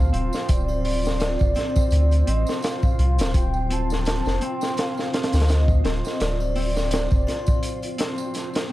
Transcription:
0.00 0.10 D2 medium
0.00 0.12 C4 loud
0.00 8.72 C4 medium
0.00 0.84 F4 medium
0.00 8.72 F4 medium
0.00 8.72 C5 medium
0.00 0.51 F5 loud
0.13 0.31 D1 loud
0.13 1.55 C4 loud
0.13 closed hi-hat medium
0.33 snare soft
0.33 tambourine medium
0.48 1.37 D1 loud
0.48 2.29 D5 loud
0.48 kick loud
0.48 closed hi-hat medium
0.48 tambourine medium
0.69 tambourine soft
0.69 triangle medium
0.84 2.98 F4 medium
0.84 open hi-hat medium
1.05 snare medium
1.05 tambourine medium
1.20 snare loud
1.20 closed hi-hat medium
1.20 tambourine medium
1.39 1.54 F1 medium
1.39 kick loud
1.39 tambourine soft
1.55 2.26 C4 loud
1.55 snare soft
1.55 closed hi-hat medium
1.55 triangle medium
1.76 kick medium
1.76 tambourine medium
1.91 2.24 D2 loud
1.91 closed hi-hat medium
1.91 tambourine medium
2.11 closed hi-hat soft
2.11 tambourine soft
2.27 2.45 A1 medium
2.27 3.70 C4 loud
2.27 2.63 D#5 medium
2.27 closed hi-hat medium
2.47 snare soft
2.47 tambourine medium
2.62 3.31 F5 loud
2.62 snare medium
2.62 closed hi-hat medium
2.62 tambourine medium
2.83 kick loud
2.83 tambourine soft
2.99 3.20 C2 medium
2.99 5.12 F4 medium
2.99 closed hi-hat medium
3.18 3.33 D1 loud
3.18 snare loud
3.18 closed hi-hat medium
3.18 tambourine medium
3.34 4.22 D1 loud
3.34 3.73 G5 loud
3.34 kick loud
3.34 closed hi-hat medium
3.34 tambourine medium
3.54 tambourine soft
3.70 4.41 C4 loud
3.70 4.44 A5 loud
3.70 closed hi-hat medium
3.90 snare soft
3.90 tambourine medium
4.05 snare loud
4.05 closed hi-hat medium
4.05 tambourine medium
4.26 4.40 F1 medium
4.26 snare medium
4.26 tambourine soft
4.41 5.84 C4 loud
4.41 4.80 G5 loud
4.41 closed hi-hat medium
4.61 snare soft
4.61 tambourine medium
4.77 5.51 F5 loud
4.77 snare loud
4.77 closed hi-hat medium
4.77 tambourine medium
4.97 snare medium
4.97 tambourine soft
5.13 7.27 F4 medium
5.13 snare medium
5.13 closed hi-hat medium
5.23 snare medium
5.23 closed hi-hat medium
5.32 5.82 D2 medium
5.32 snare medium
5.32 closed hi-hat medium
5.32 tambourine medium
5.40 snare medium
5.40 closed hi-hat medium
5.48 6.21 D#5 loud
5.48 snare loud
5.48 closed hi-hat medium
5.48 tambourine medium
5.68 kick loud
5.68 tambourine soft
5.84 6.02 D1 loud
5.84 6.55 C4 loud
5.84 snare loud
5.84 closed hi-hat medium
6.05 snare soft
6.05 tambourine medium
6.20 7.08 D1 loud
6.20 8.31 D5 loud
6.20 snare loud
6.20 closed hi-hat medium
6.20 tambourine medium
6.40 tambourine soft
6.40 triangle medium
6.55 7.98 C4 loud
6.55 open hi-hat medium
6.77 snare medium
6.77 tambourine medium
6.91 snare loud
6.91 closed hi-hat medium
6.91 tambourine medium
7.11 7.26 F1 medium
7.11 kick loud
7.11 tambourine soft
7.27 8.72 F4 medium
7.27 snare soft
7.27 closed hi-hat medium
7.27 triangle medium
7.46 kick loud
7.46 tambourine medium
7.63 closed hi-hat medium
7.63 tambourine medium
7.82 closed hi-hat soft
7.82 tambourine soft
7.98 8.70 C4 loud
7.98 snare loud
7.98 closed hi-hat medium
8.18 tambourine medium
8.34 snare soft
8.34 closed hi-hat medium
8.34 tambourine medium
8.53 snare loud
8.53 closed hi-hat medium
8.53 tambourine soft

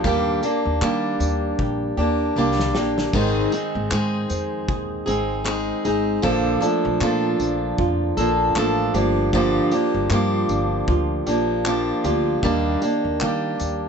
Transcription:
0.00 0.36 D#2 loud
0.00 0.14 F3 medium
0.00 1.20 D4 medium
0.04 0.43 D#3 medium
0.04 0.43 G3 medium
0.04 0.44 A#3 medium
0.04 0.43 D4 medium
0.04 0.41 G4 medium
0.04 kick loud
0.43 0.81 A#3 medium
0.43 0.82 D4 medium
0.43 0.82 G4 medium
0.43 tambourine medium
0.65 0.78 D#2 medium
0.81 1.13 D#3 loud
0.81 1.98 G3 medium
0.81 1.98 A#3 medium
0.81 1.98 D4 medium
0.81 1.96 G4 medium
0.81 clap loud
1.20 1.52 D#2 loud
1.20 1.97 D4 medium
1.20 tambourine medium
1.59 1.91 A#1 medium
1.59 2.74 G4 medium
1.59 kick loud
1.97 2.29 D#2 medium
1.97 2.36 A#3 soft
1.97 2.37 D4 medium
1.97 2.36 G4 medium
2.36 2.75 C2 medium
2.36 2.75 G3 medium
2.36 2.76 A#3 medium
2.36 2.75 D4 medium
2.36 2.74 G4 medium
2.59 snare medium
2.75 3.07 A#1 medium
2.75 3.14 A#3 soft
2.75 3.14 D4 medium
2.75 3.14 G4 medium
2.75 snare loud
2.98 snare medium
3.13 3.45 G#1 loud
3.13 3.52 G#2 medium
3.13 3.53 D#3 medium
3.13 3.53 G#3 medium
3.13 3.53 C4 medium
3.13 3.52 D#4 medium
3.13 3.51 G#4 medium
3.13 kick loud
3.13 crash medium
3.52 3.89 G#3 soft
3.52 3.90 C4 soft
3.52 3.91 D#4 medium
3.52 3.91 G#4 medium
3.52 tambourine medium
3.75 3.88 G#1 loud
3.90 4.23 G#2 loud
3.90 5.07 G#3 medium
3.90 5.07 C4 medium
3.90 5.06 D#4 medium
3.90 5.05 G#4 medium
3.90 clap loud
4.30 4.68 F2 medium
4.30 5.06 C4 medium
4.30 tambourine medium
4.68 5.00 D#2 medium
4.68 5.84 G#4 medium
4.68 kick loud
5.06 5.71 G#1 medium
5.06 5.43 G#3 soft
5.06 5.45 C4 medium
5.06 5.45 D#4 medium
5.06 5.45 G#4 medium
5.06 tambourine medium
5.44 5.84 G#3 medium
5.44 5.85 C4 medium
5.44 5.84 D#4 medium
5.44 5.83 G#4 medium
5.44 clap loud
5.85 6.17 G#1 medium
5.85 6.23 G#3 soft
5.85 6.23 C4 medium
5.85 6.23 D#4 medium
5.85 6.23 G#4 medium
5.85 tambourine medium
6.22 6.55 A#1 loud
6.22 6.62 A#2 medium
6.22 6.62 D3 medium
6.22 6.62 F3 medium
6.22 6.62 A#3 medium
6.22 6.61 D4 medium
6.22 6.59 A4 loud
6.22 kick loud
6.60 6.99 F3 soft
6.60 8.55 A3 medium
6.60 7.00 A#3 medium
6.60 7.01 D4 medium
6.60 7.00 A4 medium
6.60 tambourine medium
6.85 6.98 A#1 loud
7.00 7.33 A#2 medium
7.00 8.19 F3 medium
7.00 8.18 A#3 medium
7.00 8.17 D4 medium
7.00 7.78 F4 medium
7.00 8.16 A4 medium
7.00 clap loud
7.40 7.71 A#1 medium
7.40 8.17 D4 medium
7.40 tambourine medium
7.78 8.10 F2 medium
7.78 10.11 F4 medium
7.78 kick loud
8.17 8.49 A#1 loud
8.17 8.54 F3 medium
8.17 8.55 A#3 medium
8.17 8.56 D4 medium
8.17 8.56 A4 medium
8.17 tambourine medium
8.55 8.87 A1 loud
8.55 8.94 F3 medium
8.55 9.04 A3 medium
8.55 8.95 A#3 medium
8.55 8.94 D4 medium
8.55 8.94 A4 medium
8.55 clap loud
8.94 9.58 G1 loud
8.94 9.33 F3 soft
8.94 9.34 A#3 medium
8.94 9.33 D4 medium
8.94 9.33 G4 medium
8.94 tambourine medium
9.33 9.72 G2 medium
9.33 9.72 D3 medium
9.33 9.73 F3 medium
9.33 9.72 A#3 medium
9.33 9.72 D4 medium
9.33 9.71 G4 loud
9.33 kick loud
9.71 10.09 F3 soft
9.71 10.10 A#3 medium
9.71 10.11 D4 medium
9.71 10.11 G4 medium
9.71 tambourine medium
9.94 10.12 G1 loud
10.10 10.42 G2 loud
10.10 11.27 F3 medium
10.10 11.28 A#3 medium
10.10 11.27 D4 medium
10.10 10.87 F4 medium
10.10 11.26 G4 medium
10.10 clap loud
10.49 10.81 G1 medium
10.49 11.27 D4 medium
10.49 tambourine medium
10.88 11.20 D2 medium
10.88 12.04 F4 medium
10.88 kick loud
11.26 11.90 A#1 loud
11.26 11.65 F3 medium
11.26 11.65 A#3 medium
11.26 11.66 D4 medium
11.26 11.65 G4 medium
11.26 tambourine medium
11.65 12.04 F3 medium
11.65 12.05 A#3 medium
11.65 12.04 D4 medium
11.65 12.03 G4 medium
11.65 clap loud
12.04 12.36 D2 loud
12.04 12.43 F3 soft
12.04 12.43 A#3 medium
12.04 12.43 D4 medium
12.04 12.53 F4 medium
12.04 12.43 G4 medium
12.04 tambourine medium
12.43 12.75 D#2 loud
12.43 12.82 D#3 medium
12.43 12.82 G3 medium
12.43 12.83 A#3 medium
12.43 12.82 D4 medium
12.43 12.80 G4 medium
12.43 kick loud
12.82 13.20 A#3 soft
12.82 13.21 D4 medium
12.82 13.21 G4 medium
12.82 tambourine medium
13.05 13.18 D#2 medium
13.21 13.53 D#3 loud
13.21 13.88 G3 medium
13.21 13.88 A#3 medium
13.21 13.88 D4 medium
13.21 13.88 G4 medium
13.21 clap loud
13.60 13.88 D#2 medium
13.60 13.88 D4 medium
13.60 tambourine medium

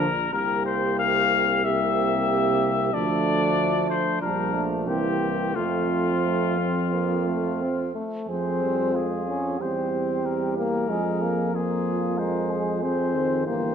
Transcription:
0.00 0.32 A#1 medium
0.00 0.32 A#4 medium
0.32 2.90 C2 medium
0.32 1.61 C3 medium
0.32 1.61 A#3 medium
0.32 1.61 G4 medium
0.32 0.65 A#4 medium
0.66 0.99 C5 medium
0.99 1.66 F5 medium
1.64 2.91 C3 medium
1.64 2.91 A#3 medium
1.64 2.91 G4 medium
1.64 2.95 E5 medium
2.93 4.05 D2 medium
2.93 4.19 F3 medium
2.93 4.19 A3 medium
2.93 4.18 D4 medium
2.93 3.89 D5 medium
3.90 4.21 C5 medium
4.21 4.89 A#1 medium
4.21 4.90 F3 soft
4.21 4.57 G3 soft
4.21 4.89 D4 medium
4.21 4.64 A#4 medium
4.56 4.90 A3 soft
4.87 5.56 C2 medium
4.87 5.56 E3 medium
4.87 5.58 A#3 soft
4.87 5.54 C4 soft
4.87 5.56 G4 medium
5.54 7.95 F2 medium
5.54 7.92 F3 medium
5.54 6.17 A3 soft
5.54 7.91 C4 medium
5.54 7.95 F4 medium
6.24 6.60 A3 medium
6.59 6.94 C4 soft
6.93 7.28 A#3 soft
7.27 7.63 A3 medium
7.62 7.95 C4 medium
7.95 8.28 A3 soft
8.28 9.56 F2 soft
8.28 8.63 F3 soft
8.28 9.11 C4 medium
8.28 8.90 G#4 soft
8.28 8.96 C5 soft
8.62 8.95 G3 soft
8.93 9.28 G#3 soft
8.93 9.60 F4 soft
8.93 9.63 G#4 soft
9.27 9.60 F3 soft
9.27 9.59 C#4 soft
9.59 10.87 E2 soft
9.59 10.24 G3 soft
9.59 10.55 C4 medium
9.59 9.91 G4 soft
9.59 10.27 C5 soft
9.91 10.90 G4 soft
10.24 10.91 G3 soft
10.24 10.56 A#4 soft
10.57 10.90 A#3 medium
10.57 11.57 A#4 soft
10.89 13.49 F2 soft
10.89 12.82 F3 soft
10.89 11.23 G#3 medium
10.89 11.53 G#4 soft
11.22 11.54 A#3 medium
11.54 12.20 A#3 medium
11.54 12.20 F4 soft
11.54 12.19 G#4 soft
12.18 12.84 G#3 soft
12.18 12.52 A#4 soft
12.18 12.82 C5 soft
12.50 13.46 G#4 soft
12.83 13.17 F3 soft
12.83 13.46 C4 medium
12.83 13.45 C5 soft
13.16 13.50 D#3 soft
13.46 13.75 G1 soft
13.46 13.75 E3 soft
13.46 13.75 A#3 medium
13.46 13.75 G4 soft
13.46 13.75 C5 soft

